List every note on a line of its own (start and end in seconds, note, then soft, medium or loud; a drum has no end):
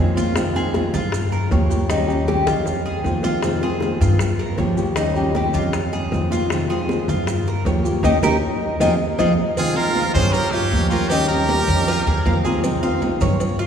0.00 0.88 F2 medium
0.00 0.16 D#3 medium
0.00 0.15 G#3 medium
0.00 0.15 C4 medium
0.00 0.14 F4 medium
0.00 0.16 G#4 medium
0.16 0.35 D#3 medium
0.16 0.35 G#3 medium
0.16 0.35 C4 medium
0.16 0.35 F4 medium
0.16 0.54 F4 medium
0.16 high bongo soft
0.16 high conga medium
0.16 maracas medium
0.35 0.54 C3 medium
0.35 0.55 D#3 medium
0.35 0.54 G#3 medium
0.35 0.54 C4 medium
0.35 0.53 F4 medium
0.35 high bongo medium
0.35 high conga soft
0.35 maracas medium
0.55 0.73 D#3 medium
0.55 0.74 G#3 medium
0.55 0.74 C4 medium
0.55 0.73 F4 medium
0.55 0.93 G#4 medium
0.55 high bongo soft
0.55 high conga soft
0.55 maracas soft
0.74 1.12 D#3 medium
0.74 1.13 G#3 medium
0.74 1.13 C4 medium
0.74 1.12 F4 medium
0.74 high bongo medium
0.74 high conga loud
0.74 maracas soft
0.94 1.47 G2 loud
0.94 1.31 F4 medium
0.94 high conga soft
0.94 low conga medium
0.94 maracas medium
1.12 muted nylon-string guitar stroke medium
1.12 high bongo medium
1.12 high conga soft
1.12 maracas medium
1.32 1.51 A#4 medium
1.32 high bongo soft
1.32 high conga soft
1.32 maracas soft
1.50 2.41 D#2 medium
1.50 1.69 F3 medium
1.50 1.69 A#3 medium
1.50 1.69 F4 medium
1.50 1.68 G4 medium
1.50 1.89 C#5 medium
1.50 high bongo soft
1.50 low bongo medium
1.50 high conga medium
1.50 maracas soft
1.69 1.88 F3 medium
1.69 1.89 A#3 medium
1.69 1.89 F4 medium
1.69 1.88 G4 medium
1.69 high bongo soft
1.69 high conga medium
1.69 maracas medium
1.89 2.08 D#3 medium
1.89 2.08 G3 medium
1.89 2.07 C#4 medium
1.89 2.27 D#4 medium
1.89 2.06 G4 medium
1.89 high bongo medium
1.89 high conga soft
1.89 maracas medium
2.07 2.27 G3 medium
2.07 2.27 C#4 medium
2.07 2.26 G4 medium
2.07 high bongo soft
2.07 high conga soft
2.07 maracas soft
2.28 2.65 D#3 soft
2.28 2.66 G3 medium
2.28 2.66 C#4 medium
2.28 2.47 G4 medium
2.28 2.66 G4 medium
2.28 high bongo medium
2.28 high conga medium
2.28 maracas soft
2.47 3.01 F2 loud
2.47 2.84 F4 medium
2.47 high bongo medium
2.47 maracas medium
2.66 muted nylon-string guitar stroke medium
2.66 low bongo medium
2.66 high conga soft
2.66 maracas medium
2.86 3.23 G#4 medium
2.86 high conga soft
2.86 maracas soft
3.04 3.95 F2 medium
3.04 3.23 D#3 medium
3.04 3.24 G#3 medium
3.04 3.23 C4 medium
3.04 3.22 F4 medium
3.04 low bongo medium
3.04 high conga medium
3.04 maracas soft
3.23 3.42 D#3 medium
3.23 3.43 G#3 medium
3.23 3.43 C4 medium
3.23 3.42 F4 medium
3.23 3.61 F4 medium
3.23 low bongo medium
3.23 high conga medium
3.23 maracas medium
3.43 3.62 C3 medium
3.43 3.62 D#3 medium
3.43 3.62 G#3 medium
3.43 3.62 C4 medium
3.43 3.62 F4 medium
3.43 high bongo medium
3.43 high conga soft
3.43 maracas medium
3.62 3.80 D#3 medium
3.62 3.81 G#3 medium
3.62 3.81 C4 medium
3.62 3.81 F4 medium
3.62 4.00 G#4 medium
3.62 high bongo soft
3.62 high conga soft
3.62 maracas soft
3.81 4.19 D#3 medium
3.81 4.19 G#3 medium
3.81 4.20 C4 medium
3.81 4.20 F4 medium
3.81 high bongo medium
3.81 high conga loud
3.81 maracas soft
4.01 4.54 G2 loud
4.01 4.38 F4 medium
4.01 high conga soft
4.01 low conga medium
4.01 maracas medium
4.19 muted nylon-string guitar stroke medium
4.19 high bongo medium
4.19 high conga soft
4.19 maracas medium
4.39 4.58 A#4 medium
4.39 high bongo soft
4.39 high conga soft
4.39 maracas soft
4.58 5.48 D#2 medium
4.58 4.77 F3 medium
4.58 4.77 A#3 medium
4.58 4.76 F4 medium
4.58 4.76 G4 medium
4.58 4.96 C#5 medium
4.58 high bongo soft
4.58 low bongo medium
4.58 high conga medium
4.58 maracas soft
4.77 4.96 F3 soft
4.77 4.96 A#3 medium
4.77 4.96 F4 medium
4.77 4.96 G4 medium
4.77 high bongo soft
4.77 high conga medium
4.77 maracas medium
4.96 5.15 D#3 medium
4.96 5.15 G3 medium
4.96 5.16 C#4 medium
4.96 5.34 D#4 medium
4.96 5.15 G4 medium
4.96 high bongo medium
4.96 high conga soft
4.96 maracas medium
5.16 5.34 G3 medium
5.16 5.34 C#4 medium
5.16 5.35 G4 medium
5.16 high bongo soft
5.16 maracas soft
5.35 5.73 D#3 medium
5.35 5.73 G3 medium
5.35 5.73 C#4 medium
5.35 5.54 G4 medium
5.35 5.73 G4 medium
5.35 high bongo medium
5.35 high conga loud
5.35 maracas soft
5.54 6.08 F2 loud
5.54 5.92 F4 medium
5.54 high conga soft
5.54 maracas medium
5.73 muted nylon-string guitar stroke medium
5.73 high bongo medium
5.73 high conga soft
5.73 maracas medium
5.93 6.30 G#4 medium
5.93 high bongo soft
5.93 high conga soft
5.93 maracas soft
6.12 7.02 F2 medium
6.12 6.31 D#3 medium
6.12 6.31 G#3 medium
6.12 6.31 C4 medium
6.12 6.30 F4 medium
6.12 high bongo soft
6.12 low bongo medium
6.12 high conga medium
6.12 maracas soft
6.31 6.50 D#3 medium
6.31 6.50 G#3 medium
6.31 6.50 C4 medium
6.31 6.49 F4 medium
6.31 6.69 F4 medium
6.31 high bongo soft
6.31 high conga medium
6.31 maracas medium
6.50 6.69 C3 medium
6.50 6.69 D#3 medium
6.50 6.69 G#3 medium
6.50 6.69 C4 medium
6.50 6.68 F4 medium
6.50 high bongo medium
6.50 high conga soft
6.50 maracas medium
6.69 6.87 D#3 medium
6.69 6.88 G#3 medium
6.69 6.88 C4 medium
6.69 6.88 F4 medium
6.69 7.07 G#4 medium
6.69 high bongo soft
6.69 maracas soft
6.89 7.26 D#3 medium
6.89 7.27 G#3 medium
6.89 7.27 C4 medium
6.89 7.26 F4 medium
6.89 high bongo medium
6.89 high conga loud
6.89 maracas soft
7.08 7.62 G2 loud
7.08 7.46 F4 medium
7.08 high conga soft
7.08 low conga medium
7.08 maracas medium
7.27 muted nylon-string guitar stroke medium
7.27 high bongo medium
7.27 high conga soft
7.27 maracas medium
7.47 7.66 A#4 medium
7.47 high bongo soft
7.47 high conga soft
7.47 maracas soft
7.65 8.01 D#2 medium
7.65 7.84 F3 medium
7.65 7.83 A#3 medium
7.65 7.83 F4 medium
7.65 7.82 G4 medium
7.65 8.03 C#5 medium
7.65 high bongo soft
7.65 low bongo medium
7.65 high conga medium
7.65 maracas soft
7.83 8.02 F3 medium
7.83 8.02 A#3 medium
7.83 8.03 F4 medium
7.83 8.02 G4 medium
7.83 high bongo soft
7.83 high conga medium
7.83 maracas medium
8.03 8.18 D#2 loud
8.03 8.15 A#3 medium
8.03 8.16 C#4 medium
8.03 8.16 D#4 medium
8.03 8.17 D#4 medium
8.03 8.16 G4 medium
8.03 8.16 A#4 medium
8.03 low bongo loud
8.03 high conga medium
8.03 maracas medium
8.22 8.37 D#2 loud
8.22 8.35 A#3 medium
8.22 8.35 C#4 medium
8.22 8.35 D#4 medium
8.22 8.36 D#4 medium
8.22 8.36 G4 medium
8.22 8.36 A#4 loud
8.22 low bongo loud
8.22 high conga loud
8.22 maracas loud
8.80 8.95 F2 loud
8.80 8.93 F3 loud
8.80 8.93 G#3 loud
8.80 8.93 C4 medium
8.80 8.93 D#4 loud
8.80 8.93 F4 medium
8.80 8.93 G#4 medium
8.80 low bongo medium
8.80 high conga medium
8.80 maracas loud
9.18 9.33 F2 medium
9.18 9.31 F3 loud
9.18 9.31 G#3 loud
9.18 9.31 C4 medium
9.18 9.31 D#4 medium
9.18 9.31 F4 medium
9.18 9.31 G#4 medium
9.18 low bongo loud
9.18 high conga medium
9.18 maracas loud
9.56 9.76 C3 medium
9.56 9.76 D#3 medium
9.56 9.76 G#3 medium
9.56 9.76 C4 medium
9.56 9.75 F4 medium
9.56 9.78 G#4 loud
9.56 cowbell loud
9.56 high conga soft
9.56 maracas medium
9.75 9.94 D#3 medium
9.75 9.95 G#3 medium
9.75 9.95 C4 medium
9.75 10.13 F4 loud
9.75 9.95 F4 medium
9.75 10.13 A#4 loud
9.75 10.14 F5 medium
9.75 high conga soft
9.75 maracas soft
9.95 10.33 D#3 medium
9.95 10.34 G#3 medium
9.95 10.34 C4 medium
9.95 10.34 F4 medium
9.95 cowbell medium
9.95 high conga loud
9.95 maracas soft
10.14 10.68 G2 loud
10.14 10.34 G#4 medium
10.14 10.34 C5 loud
10.14 10.52 C#5 medium
10.14 cowbell medium
10.14 high conga soft
10.14 low conga loud
10.14 maracas medium
10.32 10.54 G4 medium
10.32 10.53 A#4 loud
10.32 muted nylon-string guitar stroke medium
10.32 cowbell loud
10.32 high conga soft
10.32 maracas medium
10.51 10.89 C#4 medium
10.51 10.91 F4 medium
10.51 10.88 G4 loud
10.51 high conga soft
10.51 maracas soft
10.72 11.62 D#2 medium
10.72 10.91 F3 medium
10.72 10.91 A#3 medium
10.72 10.90 F4 medium
10.72 10.90 G4 medium
10.72 cowbell medium
10.72 high conga medium
10.72 maracas soft
10.89 11.10 F3 medium
10.89 11.10 A#3 medium
10.89 11.11 C#4 medium
10.89 11.10 F4 loud
10.89 11.10 F4 medium
10.89 11.10 G4 medium
10.89 11.10 A#4 medium
10.89 high conga medium
10.89 maracas medium
11.08 11.29 D#3 medium
11.08 11.29 G3 medium
11.08 11.30 C#4 medium
11.08 11.28 D#4 medium
11.08 11.48 D#4 medium
11.08 11.27 G4 loud
11.08 11.29 G4 medium
11.08 cowbell loud
11.08 high conga soft
11.08 maracas medium
11.28 11.49 G3 medium
11.28 11.49 C#4 medium
11.28 12.40 G4 loud
11.28 11.48 G4 medium
11.28 12.40 A#4 loud
11.28 high conga soft
11.28 maracas soft
11.49 11.87 D#3 medium
11.49 11.87 G3 medium
11.49 11.87 C#4 medium
11.49 11.87 G4 medium
11.49 11.87 A#4 medium
11.49 cowbell medium
11.49 high conga loud
11.49 maracas soft
11.68 12.04 F2 loud
11.68 cowbell medium
11.68 maracas medium
11.87 12.06 F4 medium
11.87 muted nylon-string guitar stroke medium
11.87 cowbell loud
11.87 high conga soft
11.87 maracas medium
12.06 12.24 D#2 medium
12.06 12.26 G#4 medium
12.06 high conga soft
12.06 maracas soft
12.26 13.16 F2 medium
12.26 12.44 D#3 medium
12.26 12.45 G#3 medium
12.26 12.45 C4 medium
12.26 12.44 F4 medium
12.26 12.45 F5 medium
12.26 cowbell medium
12.26 high conga medium
12.26 maracas soft
12.45 12.63 D#3 medium
12.45 12.64 G#3 medium
12.45 12.64 C4 medium
12.45 12.64 F4 medium
12.45 12.82 G#4 medium
12.45 high conga medium
12.45 maracas medium
12.64 12.83 C3 medium
12.64 12.83 D#3 medium
12.64 12.83 G#3 medium
12.64 12.83 C4 medium
12.64 12.82 F4 medium
12.64 cowbell loud
12.64 high conga soft
12.64 maracas medium
12.83 13.01 D#3 medium
12.83 13.02 G#3 medium
12.83 13.02 C4 medium
12.83 13.02 F4 medium
12.83 13.20 F5 medium
12.83 high conga soft
12.83 maracas soft
13.02 13.40 D#3 soft
13.02 13.40 G#3 medium
13.02 13.41 C4 medium
13.02 13.40 F4 medium
13.02 cowbell medium
13.02 high conga loud
13.02 maracas soft
13.21 13.67 G2 loud
13.21 13.59 C#5 medium
13.21 cowbell medium
13.21 high conga soft
13.21 low conga medium
13.21 maracas medium
13.40 muted nylon-string guitar stroke medium
13.40 cowbell loud
13.40 high conga soft
13.40 maracas medium
13.59 13.67 F4 loud
13.59 high conga soft
13.59 maracas soft